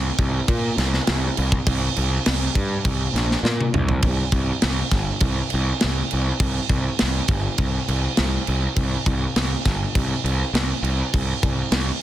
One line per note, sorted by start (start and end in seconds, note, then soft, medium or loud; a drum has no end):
0.18 0.39 C2 medium
0.18 kick medium
0.18 crash medium
0.48 0.69 A#2 medium
0.48 kick loud
0.48 crash medium
0.77 0.98 C2 medium
0.77 snare soft
0.77 crash medium
0.94 snare soft
1.07 1.29 C2 loud
1.07 snare loud
1.07 crash medium
1.37 1.59 C2 loud
1.37 crash medium
1.52 kick medium
1.67 1.88 C2 medium
1.67 kick loud
1.67 crash medium
1.96 2.18 C2 medium
1.96 crash medium
2.26 2.47 C2 medium
2.26 snare loud
2.26 crash medium
2.55 2.76 G2 medium
2.55 kick medium
2.55 crash medium
2.85 3.06 C2 medium
2.85 kick loud
2.85 crash medium
3.14 3.35 A#1 medium
3.14 snare soft
3.14 crash medium
3.31 snare soft
3.43 3.64 A#2 medium
3.43 snare medium
3.61 high tom medium
3.74 4.03 C2 medium
3.74 mid tom medium
3.89 floor tom medium
4.02 4.22 C2 medium
4.02 kick loud
4.02 crash medium
4.32 4.51 C2 medium
4.32 kick medium
4.32 crash medium
4.62 4.81 C2 medium
4.62 snare loud
4.62 crash medium
4.92 5.10 G1 medium
4.92 kick medium
4.92 snare soft
4.92 crash medium
5.20 5.40 C2 medium
5.20 kick loud
5.20 crash medium
5.50 5.71 C2 medium
5.50 crash medium
5.81 6.01 C2 loud
5.81 snare loud
5.81 crash medium
6.11 6.31 C2 medium
6.11 crash medium
6.40 6.58 C2 loud
6.40 kick loud
6.40 crash medium
6.69 6.88 C2 medium
6.69 kick medium
6.69 crash medium
6.99 7.19 C2 medium
6.99 snare loud
6.99 crash medium
7.28 7.47 G1 medium
7.28 kick medium
7.28 crash medium
7.58 7.77 C2 medium
7.58 kick loud
7.58 crash medium
7.88 8.07 C2 medium
7.88 crash medium
8.17 8.37 C2 loud
8.17 snare loud
8.17 crash medium
8.47 8.66 C2 loud
8.47 crash medium
8.76 8.95 C2 loud
8.76 kick loud
8.76 crash medium
9.06 9.25 C2 medium
9.06 kick medium
9.06 crash medium
9.36 9.54 C2 medium
9.36 snare loud
9.36 crash medium
9.66 9.84 G1 medium
9.66 kick medium
9.66 snare soft
9.66 crash medium
9.95 10.14 C2 medium
9.95 kick loud
9.95 crash medium
10.24 10.42 C2 medium
10.24 crash medium
10.53 10.72 C2 loud
10.53 snare loud
10.53 crash medium
10.82 11.01 C2 medium
10.82 crash medium
11.14 11.32 C2 loud
11.14 kick loud
11.14 crash medium
11.43 11.61 C2 medium
11.43 kick medium
11.43 crash medium
11.72 11.90 C2 medium
11.72 snare loud
11.72 crash medium